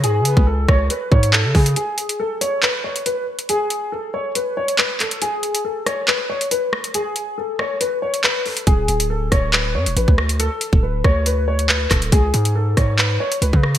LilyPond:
<<
  \new Staff \with { instrumentName = "Grand piano" } { \time 4/4 \key d \lydian \tempo 4 = 139 gis'4 a'8 cis''8 b'8 cis''8 a'8 gis'8 | gis'4 a'8 cis''8 b'8 cis''8 b'8 r8 | gis'4 a'8 cis''8 b'8 cis''8 b'8 a'8 | gis'4 a'8 cis''8 b'8 cis''8 b'8 r8 |
gis'4 a'8 cis''8 b'8 cis''8 b'8 a'8 | gis'4 a'8 cis''8 b'8 cis''8 b'8 r8 | a'4 b'8 cis''8 b'8 cis''8 b'8 a'8 | gis'4 a'8 cis''8 b'8 cis''8 b'8 r8 | }
  \new Staff \with { instrumentName = "Soft synth lead" } { \time 4/4 \key d \lydian r8 b'8 r2. | r1 | r1 | r1 |
r1 | r1 | r1 | r1 | }
  \new Staff \with { instrumentName = "808-style bass" } { \clef bass \time 4/4 \key d \lydian gis,16. cis16. cis,8. cis,8 r8 gis,8. cis16 cis8 | r1 | r1 | r1 |
r1 | d,,8 d,,4 d,,4 fis,16 d,,16 a,,16 d,8.~ | d,16 r8 d,,8. d,2 d,,8 | cis,8 gis,4 gis,4 r8 cis,16 cis8. | }
  \new DrumStaff \with { instrumentName = "Drums" } \drummode { \time 4/4 hh8 hh16 bd16 r8 <bd ss>8 hh8 bd16 hh16 hc8 <hho bd>16 hh16 | hh8 hh16 hh16 r8 hh8 hc8. hh16 hh8. hh16 | hh8 hh8 r4 hh8. hh16 hc8 <hc hh>16 hh16 | hh8 hh16 hh16 r8 <hh ss>8 hc8. hh16 hh8 ss16 hh16 |
hh8 hh8 r8 ss8 hh8. hh16 hc8 hho16 hh16 | <hh bd>8 hh16 hh16 r8 <hh bd ss>8 hc8. hh16 hh16 bd16 ss16 hh16 | hh8 hh16 bd16 r8 <bd ss>8 hh8. hh16 hc8 <hc hh bd ss>16 hh16 | <hh bd>8 hh16 hh16 r8 <hh bd ss>8 hc8. hh16 hh16 bd16 ss16 hh16 | }
>>